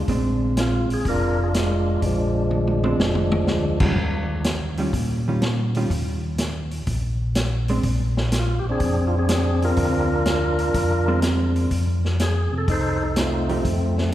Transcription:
0.08 tonewheel organ A#1, hollow-body jazz guitar G#3 C4 D4, kick, open hi-hat
0.57 tonewheel organ F4, snare, closed hi-hat
0.89 tonewheel organ A#1, open hi-hat
0.94 tonewheel organ G#4
1.05 tonewheel organ F1 A#4, kick, open hi-hat
1.09 tonewheel organ D4 F4
1.43 tonewheel organ G#4
1.54 snare, closed hi-hat
1.59 tonewheel organ G#3 D4 F4
2.02 tonewheel organ A#1 F3, kick, open hi-hat
2.06 tonewheel organ G#3 D4
2.51 mid tom
2.67 mid tom
2.84 hollow-body jazz guitar G#3 C4 D4, mid tom
2.99 tonewheel organ F1, snare
3.15 mid tom
3.32 mid tom
3.47 tonewheel organ D2, snare
3.80 hollow-body jazz guitar D#3 G3 C#4 F4, kick, crash
3.96 tonewheel organ D#2, kick
4.44 snare, closed hi-hat
4.77 hollow-body jazz guitar D#3 G3 C#4 F4, open hi-hat
4.93 tonewheel organ A#2, kick, open hi-hat
5.28 hollow-body jazz guitar D#3 G3 C#4 F4
5.42 snare, closed hi-hat
5.75 hollow-body jazz guitar D#3 G3 C#4 F4, open hi-hat
5.90 tonewheel organ D#2, kick, open hi-hat
6.38 snare, closed hi-hat
6.71 open hi-hat
6.87 tonewheel organ A#1, kick, open hi-hat
7.35 snare, closed hi-hat
7.68 hollow-body jazz guitar G#3 C4 D4, open hi-hat
7.83 tonewheel organ A#1, kick, open hi-hat
8.17 snare
8.32 snare, closed hi-hat
8.39 tonewheel organ F4
8.59 tonewheel organ G4
8.65 tonewheel organ A#1
8.69 tonewheel organ C4 D4 G#4
8.80 tonewheel organ F2, kick, open hi-hat
9.07 tonewheel organ F4
9.18 tonewheel organ C4 D4 G#4
9.29 snare, closed hi-hat
9.62 tonewheel organ D4 F4 A#4, open hi-hat
9.77 tonewheel organ D2, kick, open hi-hat
10.25 snare, closed hi-hat
10.59 open hi-hat
10.74 tonewheel organ F2, kick, open hi-hat
11.08 hollow-body jazz guitar G#3 C4 D4
11.22 snare, closed hi-hat
11.56 open hi-hat
11.71 tonewheel organ F2, kick, open hi-hat
12.05 snare
12.19 tonewheel organ G#4, snare, closed hi-hat
12.52 tonewheel organ C3
12.58 tonewheel organ A4
12.68 tonewheel organ C2 D#4 A4 C5, kick, open hi-hat
13.05 tonewheel organ A4
13.16 tonewheel organ C4, snare, closed hi-hat
13.20 tonewheel organ A3 F4
13.49 hollow-body jazz guitar F3 A3 D#4 G4, open hi-hat
13.64 tonewheel organ F2, kick, open hi-hat
13.98 snare

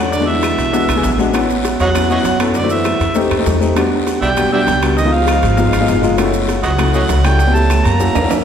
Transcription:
Already playing: upright bass E2, upright piano A3 C#4 D4
0.00 upright piano F#4
0.12 trombone D3, harmonica D5, high bongo, long guiro, maracas
0.19 upright piano G#3 B3 D4 F#4
0.28 trombone E3, harmonica E5
0.43 high bongo, high timbale, short guiro, claves, maracas
0.58 upright bass B1, high bongo, high timbale, short guiro, maracas
0.72 upright piano G#3 B3 D4 F#4, high bongo, long guiro, maracas
0.88 upright bass B1, high bongo, high timbale, claves, maracas
0.95 upright piano G#3 B3 D4 G#4
1.03 upright bass A1, high bongo, low bongo, short guiro, maracas
1.18 upright piano G#3 B3 D4 F#4, high bongo, short guiro, maracas
1.33 upright piano B3 C#4 E4 F#4, high bongo, high timbale, long guiro, claves, maracas
1.50 maracas
1.65 high bongo, high timbale, short guiro, maracas
1.80 upright bass E2, trombone F#3, harmonica C#5 D#5 F#5, high timbale, short guiro, maracas
1.94 upright piano B3 C#4 E4 F#4, high bongo, high timbale, long guiro, claves, maracas
2.09 trombone F#3, upright piano B3 C#4 E4 F#4, harmonica C#5 D#5 F#5, maracas
2.24 upright bass F#2, high bongo, low bongo, high timbale, short guiro, maracas
2.39 upright piano B3 C#4 E4 A4, high timbale, short guiro, claves, maracas
2.54 trombone D3, harmonica D5, high bongo, long guiro, maracas
2.62 upright piano A3 C4 E4 F#4
2.70 trombone E3, harmonica E5, maracas
2.84 high bongo, high timbale, short guiro, claves, maracas
3.00 upright bass F2, high bongo, high timbale, short guiro, maracas
3.15 upright piano A3 C4 D#4 G4, high bongo, long guiro, maracas
3.31 upright bass F2, high bongo, high timbale, claves
3.37 upright piano A3 C4 D#4 G4
3.46 upright bass E2, high bongo, low bongo, low timbale, short guiro, maracas
3.60 upright piano A3 C4 D#4 G4, high bongo, short guiro, maracas
3.75 upright piano G3 B3 D4 F#4, high bongo, high timbale, long guiro, claves, maracas
4.07 high bongo, high timbale, short guiro, maracas
4.21 upright bass B1, trombone G3, harmonica D5 E5 G5, high timbale, short guiro, maracas
4.37 upright piano G3 B3 D4 F#4, high bongo, high timbale, long guiro, claves, maracas
4.52 upright piano G3 B3 D4 F#4, trombone G3, harmonica D5 E5 G5
4.67 upright bass C#2, high bongo, low bongo, high timbale, short guiro, maracas
4.82 upright piano G3 B3 D4 F#4, high timbale, short guiro, claves, maracas
4.97 trombone D#3, harmonica D#5, high bongo, long guiro, maracas
5.04 upright piano G#3 B3 D#4 F4
5.13 trombone F3, harmonica F5
5.27 high bongo, high timbale, short guiro, claves, maracas
5.42 upright bass G#1, high bongo, high timbale, short guiro, maracas
5.57 upright piano G#3 B3 D#4 F4, high bongo, long guiro, maracas
5.73 upright bass G#1, high bongo, high timbale, claves, maracas
5.80 upright piano G#3 B3 D#4 F4
5.88 upright bass F#1, high bongo, low bongo, short guiro, maracas
6.01 upright piano G#3 B3 D#4 F4, high bongo, short guiro, maracas
6.17 upright piano A3 C#4 E4 F#4, high bongo, high timbale, long guiro, claves, maracas
6.34 maracas
6.48 high bongo, high timbale, short guiro, maracas
6.63 upright bass C#2, trombone F#3, harmonica C#5 D#5 F#5, high timbale, short guiro, maracas
6.78 upright piano A3 C#4 E4 F#4, high bongo, high timbale, long guiro, claves, maracas
6.93 trombone F#3, upright piano A3 C#4 E4 F#4, harmonica C#5 D#5 F#5, maracas
7.09 upright bass C#2, high bongo, low bongo, high timbale, short guiro, maracas
7.24 trombone G3, upright piano A3 C#4 E4 F#4, harmonica G5, high timbale, short guiro, claves, maracas
7.39 high bongo, long guiro, maracas
7.46 upright piano B3 C#4 E4 G4
7.55 trombone A3, harmonica A5, maracas
7.70 high bongo, high timbale, short guiro, claves, maracas
7.85 upright bass F#2, trombone A#3, harmonica A#5, high bongo, high timbale, short guiro, maracas
7.99 upright piano A#3 C#4 E4 F#4, high bongo, long guiro, maracas
8.15 upright bass E2, low bongo, high timbale, claves, maracas
8.22 upright piano A#3 C#4 E4 F#4
8.31 low bongo, high timbale, short guiro, maracas

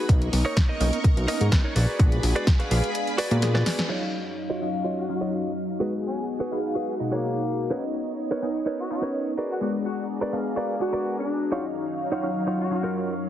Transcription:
0.09 analog synth bass B1, analog polysynth A#3 B3 C#4 D#4, string machine A#4 D#5 C#6, kick, closed hi-hat
0.22 closed hi-hat
0.33 analog synth bass B1, open hi-hat
0.45 clean electric guitar D#4 A#4 C#5
0.57 kick, snare, closed hi-hat
0.68 clean electric guitar D#4 A#4 D#5
0.80 analog synth bass B1, analog polysynth A#3 B3 C#4 D#4, open hi-hat
0.93 closed hi-hat
1.04 analog synth bass B1, kick, closed hi-hat
1.17 analog synth bass B1, closed hi-hat
1.28 analog polysynth A#3 B3 C#4 D#4, clean electric guitar D#4 A#4 D#5, open hi-hat
1.41 analog synth bass G#2, closed hi-hat
1.52 analog synth bass B1, kick, snare, closed hi-hat
1.64 clean electric guitar D#4 A#4 C#5
1.75 analog synth bass A#1, clean electric guitar F#4 G#4 B4 D5, string machine G#4 D5 B5, open hi-hat
1.99 analog synth bass A#1, analog polysynth G#3 B3 D4 F#4, kick, closed hi-hat
2.12 closed hi-hat
2.23 analog synth bass A#1, open hi-hat
2.35 clean electric guitar F#4 G#4 B4 D5, closed hi-hat
2.47 kick, snare, closed hi-hat
2.59 clean electric guitar F#4 G#4 B4 F5, closed hi-hat
2.71 analog synth bass A#1, analog polysynth G#3 B3 D4 F5, open hi-hat
2.84 closed hi-hat
2.95 closed hi-hat
3.07 closed hi-hat
3.18 clean electric guitar F#4 G#4 B4 D5, open hi-hat
3.31 analog synth bass A#2, analog polysynth G#3 B3 D4 F#4, closed hi-hat
3.42 analog polysynth G#3 B3 D4 G#4, snare, closed hi-hat
3.55 clean electric guitar F#4 G#4 B4 D5, snare
3.66 snare, open hi-hat
3.79 snare, closed hi-hat
3.89 analog polysynth F#3 C#4 D#4 F5, string machine F#3 D#5 F5 C#6, clean electric guitar F4 F#4 C#5 D#5, crash
4.13 muted clean electric guitar stroke
4.50 clean electric guitar F4 F#4 C#5 D#5
4.61 analog polysynth F#3 C#4 D#4 F5
4.84 clean electric guitar F4 F#4 C#5 D#5
4.98 horn section F#4
5.09 analog polysynth F#3 C#4 D#4 F5, horn section F#4
5.21 clean electric guitar F4 F#4 C#5 D#5
5.80 analog polysynth G#3 B3 D#4 F#4, clean electric guitar F#4 G#4 B4, string machine F#4 G#4
6.04 horn section C#4, muted clean electric guitar stroke
6.40 clean electric guitar F#4 G#4 B4
6.52 analog polysynth G#3 B3 D#4 F5
6.75 clean electric guitar F#4 G#4 B4
6.99 analog polysynth B2 G#3 D#4 F#4
7.12 horn section A#3, clean electric guitar F#4 G#4 C#5
7.70 analog polysynth B3 C#4 D#4, clean electric guitar D#4 A#4 B4 C#5, string machine C#5 D#5
7.95 muted clean electric guitar stroke
8.31 clean electric guitar D#4 A#4 B4 C#5
8.42 analog polysynth B3 C#4 D#4
8.66 clean electric guitar D#4 A#4 B4 C#5
8.79 horn section F#4
8.90 analog polysynth B3 C#4 D#4, horn section F#4
9.02 clean electric guitar D#4 A#4 B4 C#5
9.37 clean electric guitar F#4 G#4 A#4 B4 D5, string machine G#4 D5 A#5
9.50 horn section F#4
9.61 analog polysynth G#3 B3 D4 F#4, horn section F#4
9.85 horn section F#4, muted clean electric guitar stroke
10.21 clean electric guitar F#4 G#4 A#4 B4 D5
10.32 analog polysynth G#3 B3 D4 F5
10.56 clean electric guitar F#4 G#4 A#4 B4 D5
10.79 analog polysynth G#3 B3 D4 F#4, horn section F#4
10.93 clean electric guitar F#4 G#4 A#4 B4 D5
11.17 horn section D4
11.51 analog polysynth F#3 C#4 D#4 F5, string machine F#3 D#4 C#5 F5, clean electric guitar D#4 F4 F#4 C#5
11.76 muted clean electric guitar stroke
12.12 clean electric guitar D#4 F4 F#4 C#5
12.23 analog polysynth F#3 C#4 D#4 F5
12.47 clean electric guitar D#4 F4 F#4 C#5
12.60 horn section F#4
12.70 analog polysynth F#3 C#4 D#4 F5, horn section F#4
12.83 clean electric guitar D#4 F4 F#4 A#4

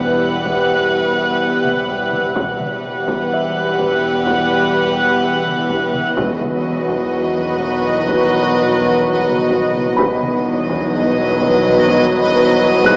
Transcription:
Already playing: double bass section E1, cello section E2, synth drone E2, trombone section E3 G3, french horn section B3 G4, violin section G4 B4, ambient pad B4 E5 F#5, viola section F#5
0.46 taiko
1.65 taiko mid
1.88 taiko
2.13 taiko mid
2.35 double bass section E1, synth drone E2, cello section E2, trombone section E3 G3, french horn section B3 G4, violin section G4 B4, ambient pad B4 E5 F#5, viola section F#5, taiko
2.60 taiko mid
3.08 taiko
3.33 felt piano E5
3.79 taiko
4.27 taiko
5.46 taiko mid
5.70 taiko
5.94 taiko mid
6.17 double bass section E1, cello section E2, timpani E2, synth drone E2, trombone section D#3 F#3, french horn section B3 F#4, viola section F#4, violin section B4 D#5, ambient pad B4 D#5 F#5, taiko
6.41 taiko mid
6.89 taiko
7.60 taiko
8.08 taiko
9.27 taiko mid
9.50 taiko
9.74 taiko mid
9.96 double bass section E1, cello section E2, synth drone E2, trombone section D#3 F#3, viola section F#3, french horn section B3 D#4, violin section B4 D#5, ambient pad B4 D#5 F#5, felt piano B5, taiko
10.22 taiko mid
10.69 taiko
11.41 taiko
11.88 taiko
12.84 felt piano G4 F#6, taiko low-mid

